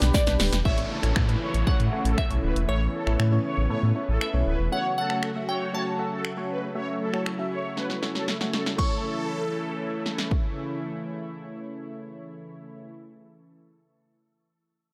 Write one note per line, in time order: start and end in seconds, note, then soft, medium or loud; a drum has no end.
0.00 0.11 B1 loud
0.00 0.61 D3 medium
0.00 0.61 G3 medium
0.00 0.61 B3 medium
0.00 0.20 D4 medium
0.00 0.20 G4 medium
0.00 0.61 G4 medium
0.00 0.20 B4 loud
0.00 0.13 B5 medium
0.00 snare medium
0.00 closed hi-hat medium
0.00 shaker medium
0.00 shaker soft
0.14 0.67 D5 medium
0.14 0.62 G5 medium
0.14 kick loud
0.14 snare medium
0.14 shaker medium
0.27 0.37 B1 medium
0.27 0.58 D4 medium
0.27 0.58 G4 medium
0.27 0.58 B4 loud
0.27 snare medium
0.27 closed hi-hat medium
0.27 shaker medium
0.40 0.50 D1 medium
0.40 snare loud
0.40 open hi-hat medium
0.40 shaker medium
0.53 0.62 E1 loud
0.53 snare loud
0.53 closed hi-hat medium
0.53 shaker medium
0.65 0.85 A1 loud
0.65 8.75 C#3 medium
0.65 4.68 E3 medium
0.65 0.96 A3 medium
0.65 2.67 A3 medium
0.65 0.96 C#4 medium
0.65 0.96 E4 medium
0.65 4.68 E4 medium
0.65 0.83 C#5 loud
0.65 0.96 C#5 medium
0.65 1.70 E5 medium
0.65 kick loud
0.65 downlifter medium
0.78 closed hi-hat medium
0.91 1.09 A4 medium
1.03 1.13 A1 loud
1.03 1.24 A3 medium
1.03 1.24 C#4 medium
1.03 1.24 E4 medium
1.03 1.24 C#5 medium
1.03 finger snap medium
1.03 closed hi-hat medium
1.16 1.36 A2 loud
1.16 finger snap loud
1.16 kick loud
1.28 1.60 A3 medium
1.28 1.60 C#4 medium
1.28 1.60 E4 medium
1.28 1.60 B4 medium
1.28 closed hi-hat soft
1.42 1.60 C#5 medium
1.54 1.64 A1 medium
1.54 closed hi-hat medium
1.67 1.72 A2 soft
1.67 1.87 A3 medium
1.67 1.88 C#4 medium
1.67 1.88 E4 medium
1.67 1.88 C#5 medium
1.67 1.76 C#5 medium
1.67 2.19 F#5 medium
1.67 kick loud
1.80 1.89 A2 medium
1.80 closed hi-hat medium
1.92 2.23 A3 medium
1.92 2.23 C#4 medium
1.92 2.23 E4 medium
1.92 2.24 C#5 medium
2.05 2.15 A1 medium
2.05 2.14 A4 medium
2.05 closed hi-hat medium
2.18 2.70 E5 medium
2.18 finger snap loud
2.18 kick loud
2.30 2.40 B1 medium
2.30 2.61 A3 medium
2.30 2.61 C#4 medium
2.30 2.61 E4 medium
2.30 2.62 C#5 medium
2.30 closed hi-hat soft
2.43 2.53 D1 medium
2.43 2.52 B4 medium
2.56 2.66 E1 medium
2.56 closed hi-hat medium
2.68 2.88 A1 loud
2.68 2.99 A3 medium
2.68 4.70 B3 medium
2.68 2.99 C#4 medium
2.68 3.00 E4 medium
2.68 2.86 C#5 medium
2.68 4.17 C#5 medium
2.68 3.00 C#5 medium
2.94 3.12 A4 medium
3.06 3.17 A1 medium
3.06 3.27 A3 medium
3.06 3.27 C#4 medium
3.06 3.27 E4 medium
3.06 3.28 C#5 medium
3.06 finger snap medium
3.19 3.39 A2 loud
3.19 finger snap loud
3.32 3.63 A3 medium
3.32 3.63 C#4 medium
3.32 3.63 E4 medium
3.32 3.63 C#5 medium
3.45 3.63 C#5 medium
3.58 3.67 A1 medium
3.70 3.76 A2 soft
3.70 3.91 A3 medium
3.70 3.91 C#4 medium
3.70 3.91 E4 medium
3.70 3.91 A4 medium
3.70 3.79 C#5 medium
3.83 3.93 A2 medium
3.95 4.27 A3 medium
3.95 4.27 C#4 medium
3.95 4.27 E4 medium
3.95 4.27 C#5 medium
4.08 4.18 A1 medium
4.08 4.17 A4 medium
4.21 4.74 E5 medium
4.21 finger snap loud
4.34 4.44 B1 medium
4.34 4.65 A3 medium
4.34 4.65 C#4 medium
4.34 4.65 E4 medium
4.34 4.65 C#5 medium
4.46 4.56 D1 medium
4.46 4.56 B4 medium
4.59 4.69 E1 medium
4.72 8.75 F#3 medium
4.72 5.03 A3 medium
4.72 8.75 A3 medium
4.72 5.03 C#4 medium
4.72 5.03 F#4 medium
4.72 6.73 F#4 medium
4.72 4.90 C#5 medium
4.72 5.03 C#5 medium
4.72 4.96 F#5 loud
4.97 5.15 A4 medium
4.97 5.50 F#5 loud
5.10 5.31 A3 medium
5.10 5.31 C#4 medium
5.10 5.31 F#4 medium
5.10 5.31 C#5 medium
5.10 finger snap medium
5.23 finger snap loud
5.35 5.66 A3 medium
5.35 5.66 C#4 medium
5.35 5.67 F#4 medium
5.35 5.67 E5 medium
5.48 5.66 C#5 medium
5.48 5.75 G5 loud
5.73 5.94 A3 medium
5.73 5.94 C#4 medium
5.73 5.94 F#4 medium
5.73 5.83 C#5 medium
5.73 5.94 C#5 medium
5.73 8.24 A5 loud
5.99 6.30 A3 medium
5.99 6.30 C#4 medium
5.99 6.30 F#4 medium
5.99 6.30 E5 medium
6.12 6.21 A4 medium
6.25 finger snap loud
6.37 6.68 A3 medium
6.37 6.68 C#4 medium
6.37 6.68 F#4 medium
6.37 6.68 C#5 medium
6.50 6.59 B4 medium
6.75 7.06 A3 medium
6.75 7.06 C#4 medium
6.75 8.77 E4 medium
6.75 7.06 F#4 medium
6.75 6.93 C#5 medium
6.75 7.06 E5 medium
7.01 7.19 A4 medium
7.13 7.34 A3 medium
7.13 7.34 C#4 medium
7.13 7.34 F#4 medium
7.13 7.34 C#5 medium
7.13 finger snap medium
7.26 finger snap loud
7.39 7.70 A3 medium
7.39 7.70 C#4 medium
7.39 7.70 F#4 medium
7.39 7.70 E5 medium
7.52 7.70 C#5 medium
7.77 7.98 A3 medium
7.77 7.98 C#4 medium
7.77 7.98 F#4 medium
7.77 7.86 B4 medium
7.77 7.98 C#5 medium
7.77 snare soft
7.90 snare soft
8.02 8.33 A3 medium
8.02 8.33 C#4 medium
8.02 8.33 F#4 medium
8.02 8.34 C#5 medium
8.02 snare medium
8.15 8.24 A4 medium
8.15 snare medium
8.28 snare medium
8.41 8.72 A3 medium
8.41 8.72 C#4 medium
8.41 8.72 F#4 medium
8.41 8.72 C#5 medium
8.41 snare medium
8.53 8.62 A4 medium
8.53 snare medium
8.66 snare medium
8.77 12.91 C#3 medium
8.77 12.91 E3 medium
8.77 12.89 A3 medium
8.77 12.91 A3 medium
8.77 12.90 C#4 medium
8.77 12.91 E4 medium
8.77 12.92 E4 medium
8.77 10.27 A4 medium
8.77 12.93 C#5 medium
8.77 12.91 C#6 medium
8.77 kick medium
8.77 crash medium
10.06 snare medium
10.18 snare medium
10.31 kick medium